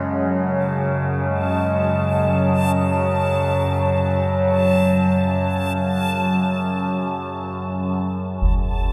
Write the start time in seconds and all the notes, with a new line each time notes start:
Already playing: F#2 C#3 G#3 C#5 F#5 G#5 A5
0.25 F#3 A5
1.28 G#3
2.30 F#3
8.42 F#2 F#3, concert bass drum